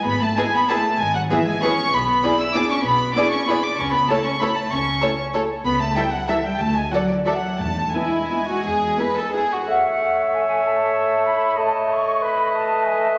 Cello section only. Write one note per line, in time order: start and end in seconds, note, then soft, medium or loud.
0.05 0.21 B3 medium
0.20 0.37 A3 medium
0.36 0.43 G#3 medium
0.53 0.69 B3 medium
0.69 0.99 A3 medium
1.00 1.15 G#3 medium
1.15 1.31 F#3 medium
1.30 1.47 E3 medium
1.46 1.62 G#3 medium
1.62 1.92 C#4 medium
1.93 2.38 B3 medium
2.39 2.54 E4 medium
2.54 2.70 D4 medium
2.70 2.85 C#4 medium
2.84 3.15 B3 medium
3.15 3.32 D4 medium
3.31 3.48 C#4 medium
3.48 3.63 B3 medium
3.63 3.78 D4 medium
3.78 3.93 C#4 medium
3.93 4.09 B3 medium
4.09 4.25 A3 medium
4.24 4.30 C#4 medium
4.40 4.46 B3 medium
4.56 4.71 A3 medium
4.70 5.18 C#4 medium
5.64 5.79 B3 medium
5.79 5.96 A3 medium
5.96 6.12 G3 medium
6.12 6.19 F#3 medium
6.29 6.45 E3 medium
6.45 6.60 G3 medium
6.60 6.76 A3 medium
6.75 6.92 G#3 medium
6.93 7.09 F#3 medium
7.10 7.27 D3 soft
7.26 7.34 E3 soft
7.34 7.59 F#3 soft
7.59 7.94 A3 medium
7.93 9.50 G#3 soft